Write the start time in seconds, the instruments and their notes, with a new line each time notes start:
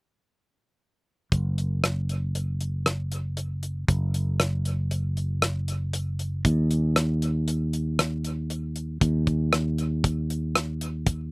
1.32 fingered electric bass F#1, kick, closed hi-hat
1.58 closed hi-hat
1.84 cross-stick, closed hi-hat
2.09 closed hi-hat
2.35 closed hi-hat
2.61 closed hi-hat
2.86 cross-stick, closed hi-hat
3.12 closed hi-hat
3.37 closed hi-hat
3.63 closed hi-hat
3.88 fingered electric bass F#1, kick, closed hi-hat
4.14 closed hi-hat
4.40 cross-stick, closed hi-hat
4.65 closed hi-hat
4.91 closed hi-hat
5.17 closed hi-hat
5.42 cross-stick, closed hi-hat
5.68 closed hi-hat
5.93 closed hi-hat
6.19 closed hi-hat
6.45 fingered electric bass D#2, kick, closed hi-hat
6.71 closed hi-hat
6.96 cross-stick, closed hi-hat
7.22 closed hi-hat
7.48 closed hi-hat
7.73 closed hi-hat
7.99 cross-stick, closed hi-hat
8.24 closed hi-hat
8.50 closed hi-hat
8.76 closed hi-hat
9.01 fingered electric bass D#2, kick, closed hi-hat
9.27 kick, closed hi-hat
9.53 cross-stick, closed hi-hat
9.78 closed hi-hat
10.04 kick, closed hi-hat
10.30 closed hi-hat
10.55 cross-stick, closed hi-hat
10.81 closed hi-hat
11.06 kick, closed hi-hat